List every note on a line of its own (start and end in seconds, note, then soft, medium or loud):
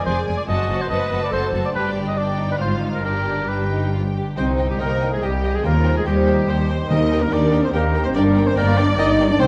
0.00 0.50 F2 medium
0.00 0.50 F3 soft
0.00 0.26 G#3 soft
0.00 0.50 D4 soft
0.00 0.50 F4 soft
0.00 0.50 F5 soft
0.06 0.15 F1 medium
0.06 0.14 F2 medium
0.06 0.27 G#4 soft
0.06 0.48 G#4 soft
0.06 0.20 C5 medium
0.06 0.27 D5 medium
0.06 0.50 D5 soft
0.06 0.25 G#5 soft
0.26 0.36 F1 soft
0.26 0.35 F2 soft
0.26 0.50 G#3 soft
0.26 0.48 G#4 soft
0.26 0.48 D5 soft
0.26 0.47 G#5 soft
0.37 0.42 D5 medium
0.48 0.57 F#1 medium
0.48 1.76 F#2 medium
0.48 0.57 F#2 medium
0.48 0.90 F#4 medium
0.48 0.69 F#4 medium
0.48 0.69 C5 medium
0.48 0.83 D#5 medium
0.48 0.68 A5 medium
0.69 0.78 F#1 medium
0.69 0.77 F#2 medium
0.69 1.77 F#3 soft
0.69 0.89 F#4 soft
0.69 0.89 C5 soft
0.69 0.88 A5 soft
0.81 0.89 C5 medium
0.89 0.99 F#1 medium
0.89 0.98 F#2 medium
0.89 1.53 A3 soft
0.89 1.10 F#4 soft
0.89 1.31 B4 medium
0.89 1.10 C5 soft
0.89 1.21 D#5 medium
0.89 1.10 A5 soft
1.11 1.20 F#1 soft
1.11 1.19 F#2 soft
1.11 1.31 F#4 soft
1.11 1.76 A4 soft
1.11 1.30 C5 soft
1.11 1.32 A5 soft
1.24 1.28 D5 medium
1.31 1.40 F#1 soft
1.31 1.40 F#2 soft
1.31 1.52 F#4 soft
1.31 1.74 A4 medium
1.31 1.52 C5 soft
1.31 1.47 C5 medium
1.31 1.76 C5 soft
1.31 1.53 A5 soft
1.53 1.62 F#1 soft
1.53 1.61 F#2 medium
1.53 1.76 A3 soft
1.53 1.74 F#4 soft
1.53 1.74 C5 soft
1.53 1.74 A5 soft
1.65 1.70 D5 medium
1.73 2.57 G1 soft
1.73 2.56 G2 medium
1.73 2.62 G2 soft
1.73 2.13 D4 soft
1.73 2.16 G4 medium
1.73 1.90 B4 medium
1.73 2.13 D5 soft
1.73 2.15 G5 soft
1.96 2.62 D3 soft
2.08 2.19 D#5 medium
2.16 2.60 D4 soft
2.16 2.38 D4 soft
2.16 2.62 D4 soft
2.16 2.59 D5 soft
2.16 2.50 D5 medium
2.16 2.60 G5 soft
2.38 2.60 D#4 soft
2.38 2.62 G4 soft
2.52 2.56 B4 medium
2.59 3.04 G#1 soft
2.59 3.06 G#2 soft
2.59 3.05 G#2 soft
2.59 2.82 F4 soft
2.59 3.04 F4 soft
2.59 3.04 C5 soft
2.59 2.76 C5 medium
2.59 3.05 F5 soft
2.82 3.04 D#4 soft
2.82 3.06 F4 soft
2.82 3.06 F5 soft
2.94 3.04 A#4 medium
3.03 4.15 G1 soft
3.03 4.39 G2 soft
3.03 4.15 G2 soft
3.03 3.47 D4 soft
3.03 4.13 G4 medium
3.03 3.50 A#4 medium
3.03 3.48 D5 soft
3.03 3.47 G5 soft
3.27 4.39 D3 soft
3.48 3.69 D4 soft
3.48 4.14 D4 soft
3.48 3.93 B4 soft
3.48 4.15 G5 soft
3.72 3.93 D#4 soft
3.93 4.01 F4 medium
3.93 4.39 D5 soft
4.15 4.39 D4 soft
4.15 4.37 G4 soft
4.37 4.75 C2 medium
4.37 5.67 C3 soft
4.37 4.68 C4 medium
4.37 5.18 D#4 medium
4.37 4.45 C5 medium
4.37 4.52 C5 medium
4.37 4.68 C5 medium
4.37 4.45 D#5 soft
4.37 4.45 G5 soft
4.48 5.53 C4 soft
4.58 5.31 G4 soft
4.58 4.66 D#5 soft
4.58 4.66 G5 soft
4.69 4.76 G3 soft
4.69 4.80 G4 soft
4.79 5.18 C2 medium
4.79 5.18 C2 soft
4.79 5.12 A#3 medium
4.79 5.11 A#4 medium
4.79 5.12 A#4 medium
4.79 5.11 A#4 medium
4.79 6.05 C5 soft
4.79 4.88 D#5 soft
4.79 4.88 G5 soft
4.91 5.10 G5 soft
5.01 5.09 D#5 soft
5.01 5.09 G5 soft
5.11 5.24 G#3 soft
5.11 5.22 G#4 soft
5.11 5.23 G#4 soft
5.11 5.26 G#4 soft
5.11 6.16 G5 soft
5.21 5.60 C2 medium
5.21 5.54 G3 medium
5.21 5.63 G4 soft
5.21 5.54 G4 medium
5.21 5.56 G4 medium
5.21 5.30 D#5 soft
5.21 5.30 G5 soft
5.32 5.85 G4 soft
5.43 9.19 G3 soft
5.43 5.51 D#5 soft
5.43 5.51 G5 soft
5.54 5.65 G#3 medium
5.54 5.74 C4 soft
5.54 5.65 G#4 medium
5.54 5.65 G#4 soft
5.54 5.65 G#4 medium
5.64 6.02 D#2 medium
5.64 6.89 D#3 medium
5.64 5.78 A#3 medium
5.64 6.05 F4 medium
5.64 5.96 A#4 medium
5.64 5.72 C5 soft
5.64 5.72 G5 soft
5.75 6.79 C4 soft
5.85 6.58 G4 soft
5.85 5.93 C5 soft
5.85 5.93 G5 soft
5.96 6.02 G#3 medium
5.96 6.07 G#4 medium
5.96 6.06 G#4 soft
5.96 6.47 D#5 soft
6.06 6.43 D#2 medium
6.06 6.44 D#2 medium
6.06 6.68 G3 medium
6.06 6.47 D#4 soft
6.06 6.68 G4 medium
6.06 6.68 G4 soft
6.06 6.68 G4 medium
6.06 6.14 C5 soft
6.06 6.92 C5 soft
6.06 6.14 G5 soft
6.17 6.37 G5 soft
6.27 6.35 C5 soft
6.27 6.35 G5 soft
6.27 7.52 D#6 soft
6.38 7.41 G5 soft
6.48 6.85 D#2 medium
6.48 6.89 C5 medium
6.48 6.56 C5 soft
6.48 7.21 D#5 soft
6.48 6.56 G5 soft
6.59 7.10 G4 soft
6.69 7.93 D#4 soft
6.69 6.77 C5 soft
6.69 6.77 G5 soft
6.80 6.92 C4 soft
6.89 7.27 D#2 medium
6.89 7.49 D#3 medium
6.89 8.17 D#3 medium
6.89 7.19 D#4 medium
6.89 7.74 A#4 medium
6.89 6.99 A#4 medium
6.89 7.18 D#5 medium
6.89 7.24 D#5 medium
6.89 6.97 D#5 medium
6.89 6.99 G5 soft
7.01 8.04 A#3 soft
7.11 7.83 G4 soft
7.11 7.20 A#4 medium
7.11 7.20 G5 soft
7.20 7.32 A#3 medium
7.20 7.31 A#4 medium
7.20 7.35 A#4 medium
7.20 7.72 D#5 soft
7.31 7.68 D#2 medium
7.31 7.69 D#2 medium
7.31 7.63 D4 medium
7.31 8.56 A#4 soft
7.31 7.40 A#4 soft
7.31 7.63 D5 medium
7.31 7.39 D5 medium
7.31 7.64 D5 medium
7.31 7.40 G5 soft
7.42 7.62 G5 medium
7.52 7.60 A#4 soft
7.52 7.61 G5 soft
7.52 8.76 D#6 medium
7.63 7.74 C4 medium
7.63 7.73 C5 soft
7.63 7.69 C5 medium
7.63 8.66 G5 medium
7.73 8.10 D#2 medium
7.73 7.88 A#3 medium
7.73 8.15 G4 medium
7.73 7.81 A#4 medium
7.73 8.05 A#4 medium
7.73 7.81 A#4 medium
7.73 8.04 A#4 medium
7.73 8.46 D#5 medium
7.73 7.82 G5 medium
7.84 8.35 G4 soft
7.94 9.47 D#4 soft
7.94 8.02 A#4 medium
7.94 8.03 G5 medium
8.04 8.25 A#3 soft
8.04 8.16 C4 medium
8.04 8.08 C5 medium
8.04 8.09 C5 medium
8.04 8.15 C5 medium
8.14 8.52 G1 medium
8.14 9.42 G2 medium
8.14 8.52 G2 medium
8.14 8.47 D4 medium
8.14 8.56 A#4 medium
8.14 8.24 A#4 medium
8.14 8.22 D5 medium
8.14 8.48 D5 medium
8.14 8.46 D5 medium
8.14 8.24 G5 medium
8.26 9.29 A#3 medium
8.36 9.07 G4 medium
8.36 8.44 A#4 medium
8.36 8.44 G5 medium
8.45 8.58 C4 medium
8.45 8.56 C5 medium
8.45 8.57 C5 medium
8.45 8.97 D#5 medium
8.56 8.94 G1 medium
8.56 8.94 G2 medium
8.56 8.78 A#3 medium
8.56 8.77 A#4 medium
8.56 8.79 A#4 medium
8.56 9.42 A#4 medium
8.56 8.65 A#4 medium
8.56 9.38 D5 medium
8.56 8.65 G5 medium
8.67 8.87 G5 medium
8.77 8.98 D4 medium
8.77 8.85 A#4 medium
8.77 8.98 D5 medium
8.77 8.99 D5 medium
8.77 8.85 G5 medium
8.88 9.47 G5 medium
8.98 9.35 G1 medium
8.98 9.35 G2 medium
8.98 9.29 D#4 loud
8.98 9.06 A#4 medium
8.98 9.06 D#5 medium
8.98 9.13 D#5 medium
8.98 9.30 D#5 medium
8.98 9.06 G5 medium
9.09 9.47 G4 medium
9.20 9.47 G3 medium
9.20 9.28 A#4 medium
9.20 9.28 G5 medium
9.29 9.42 A#3 medium
9.29 9.35 D4 medium
9.29 9.40 D5 medium
9.29 9.39 D5 medium
9.39 9.47 C2 medium
9.39 9.47 C3 medium
9.39 9.47 C4 loud
9.39 9.47 C5 medium
9.39 9.47 G5 medium